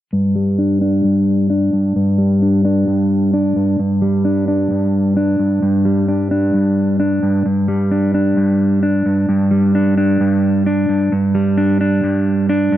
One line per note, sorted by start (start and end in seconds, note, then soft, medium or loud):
0.13 1.03 G2 medium
0.35 1.50 G3 medium
0.58 0.80 D4 medium
0.81 1.49 D4 medium
1.04 1.72 G2 medium
1.50 2.41 D4 medium
1.73 1.95 G2 medium
1.96 2.86 G2 medium
2.18 3.33 G3 medium
2.42 2.64 D4 medium
2.65 3.32 D4 medium
2.88 3.55 G2 medium
3.34 3.79 D4 medium
3.56 3.78 G2 medium
3.79 4.70 G2 medium
4.02 5.16 G3 medium
4.25 4.47 D4 medium
4.48 5.15 D4 medium
4.71 5.38 G2 medium
5.17 6.07 D4 loud
5.39 5.61 G2 medium
5.62 6.53 G2 medium
5.85 7.00 G3 medium
6.08 6.30 D4 medium
6.31 6.98 D4 medium
6.54 7.21 G2 medium
7.00 7.46 D4 medium
7.23 7.44 G2 medium
7.46 8.36 G2 medium
7.68 8.83 G3 medium
7.91 8.13 D4 medium
8.14 8.82 D4 medium
8.37 9.05 G2 medium
8.83 9.74 D4 medium
9.06 9.28 G2 medium
9.29 10.19 G2 medium
9.51 10.66 G3 medium
9.75 9.96 D4 medium
9.98 10.65 D4 medium
10.20 10.88 G2 medium
10.66 11.12 D4 medium
10.89 11.11 G2 medium
11.12 12.02 G2 medium
11.35 12.49 G3 medium
11.58 11.80 D4 medium
11.81 12.48 D4 medium
12.04 12.71 G2 medium
12.49 12.77 D4 loud
12.72 12.77 G2 medium